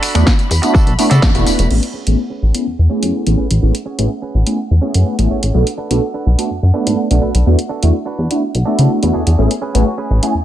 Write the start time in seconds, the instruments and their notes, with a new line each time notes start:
Already playing: clean electric guitar D4 F#4 A4, violin section B5
0.03 finger snap, open hi-hat, tambourine
0.14 analog synth bass E2, analog polysynth A3 B3 D4 E4 F#4, finger snap, closed hi-hat, tambourine
0.27 kick, snare, tambourine
0.39 closed hi-hat, tambourine
0.50 analog synth bass E2, muted clean electric guitar stroke, open hi-hat, tambourine
0.62 analog polysynth A3 B3 D4 E4 F#4, muted clean electric guitar stroke, closed hi-hat, tambourine
0.74 clean electric guitar D4 F#4 A4, kick, tambourine
0.87 analog synth bass B1, closed hi-hat, tambourine
0.98 analog polysynth A3 B3 D4 E4 F#4, open hi-hat, tambourine
1.10 analog synth bass C#3, clean electric guitar D4 F#4 A4, closed hi-hat, tambourine
1.22 analog synth bass E2, kick, snare, tambourine
1.35 analog synth bass E1, analog polysynth A3 B3 D4 E4 F#4, closed hi-hat, tambourine
1.46 analog synth bass E1, muted clean electric guitar stroke, open hi-hat, tambourine
1.59 analog synth bass E1, closed hi-hat, tambourine
1.70 analog synth bass A1, analog polysynth A3 B3 C#4 E4 G#4, violin section F#5, crash
1.83 closed hi-hat
1.94 clean electric guitar C#4 G#4 B4
2.06 analog synth bass A1, analog polysynth A3 B3 C#4 E4 G#4, closed hi-hat
2.30 clean electric guitar C#4 G#4 B4
2.42 analog synth bass A1
2.54 analog polysynth A3 B3 C#4 E4 G#4, closed hi-hat
2.67 analog synth bass E2
2.79 analog synth bass E2
2.89 analog polysynth A3 B3 C#4 E4 G#4, clean electric guitar C#4 G#4 C#5
3.03 analog synth bass F#2, closed hi-hat
3.26 analog synth bass A1, analog polysynth A3 B3 C#4 E4 G#4, closed hi-hat
3.38 clean electric guitar C#4 G#4 B4
3.51 analog synth bass A1, closed hi-hat
3.62 analog synth bass A1, analog polysynth A3 B3 C#4 E4 G#4
3.75 closed hi-hat
3.86 clean electric guitar C#4 G#4 C#5
3.98 analog synth bass A1, analog polysynth A3 B3 C#4 E4 G#4, closed hi-hat
4.22 clean electric guitar C#4 G#4 B4
4.35 analog synth bass A1
4.46 analog polysynth A3 B3 C#4 E4 G#4, closed hi-hat
4.71 analog synth bass E2
4.82 analog polysynth A3 B3 C#4 E4 G#4, clean electric guitar C#4 G#4 C#5
4.94 analog synth bass F#2, closed hi-hat
5.07 clean electric guitar F#5
5.18 analog synth bass A1, analog polysynth A3 B3 C#4 E4 G#4, closed hi-hat
5.30 clean electric guitar C#4 G#4 C#5 E5
5.43 analog synth bass A1, closed hi-hat
5.54 analog synth bass B1, analog polysynth A3 B3 D4 F#4 A4
5.67 closed hi-hat
5.78 clean electric guitar D4 A4 B4
5.90 analog synth bass B1, analog polysynth A3 B3 D4 F#4 A4, closed hi-hat
6.14 clean electric guitar D4 A4 B4
6.26 analog synth bass B1
6.38 analog polysynth A3 B3 D4 F#4 A4, closed hi-hat
6.51 analog synth bass F#2
6.63 analog synth bass F#2
6.74 analog polysynth A3 B3 D4 F#4 A4, clean electric guitar D4 A4 B4
6.87 analog synth bass G#2, closed hi-hat
7.10 analog synth bass B1, analog polysynth A3 B3 D4 F#4 A4, closed hi-hat
7.22 clean electric guitar D4 A4 B4
7.35 analog synth bass B1, closed hi-hat
7.46 analog synth bass E2, analog polysynth A3 B3 D4 E4 F#4
7.59 closed hi-hat
7.69 clean electric guitar D4 F#4 A4
7.82 analog synth bass E2, analog polysynth A3 B3 D4 E4 F#4, closed hi-hat
8.06 clean electric guitar D4 F#4 B4
8.18 analog synth bass E2
8.30 analog polysynth A3 B3 D4 E4 F#4, closed hi-hat
8.55 analog synth bass B1, closed hi-hat
8.65 analog polysynth A3 B3 D4 E4 F#4, clean electric guitar D4 F#4 A4
8.79 analog synth bass C#3, closed hi-hat
9.02 analog synth bass E2, analog polysynth A3 B3 D4 E4 F#4, closed hi-hat
9.14 analog synth bass E2, clean electric guitar D4 F#4 G#4
9.27 analog synth bass E2, closed hi-hat
9.38 analog synth bass A1, analog polysynth A3 B3 C#4 E4 G#4, violin section G#5
9.51 closed hi-hat
9.62 clean electric guitar C#4 G#4 B4
9.74 analog synth bass A1, horn section F#3 F#4, analog polysynth A3 B3 C#4 E4 G#4, closed hi-hat
9.86 horn section F#3 F#4
9.98 clean electric guitar C#4 G#4 B4
10.10 analog synth bass A1
10.22 analog polysynth A3 B3 C#4 E4 G#4, closed hi-hat
10.34 analog synth bass E2